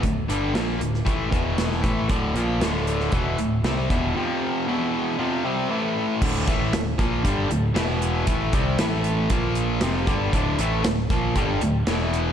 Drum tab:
CC |----------------|----------------|----------------|x---------------|
HH |x-x-x-x-x-x-x-x-|x-x-x-x-x-x-x-x-|----------------|--x-x-x-x-x-x-x-|
SD |----o--o----oo--|----o--o----o---|----------------|----o-------o---|
BD |o-------o-o---o-|o-------o-----o-|----------------|o-o---o-o-------|

CC |----------------|----------------|
HH |x-x-x-x-x-x-x-x-|x-x-x-x-x-x-x-x-|
SD |----o-------o---|----o-------o---|
BD |o-o-----o-----o-|o-----o-o-------|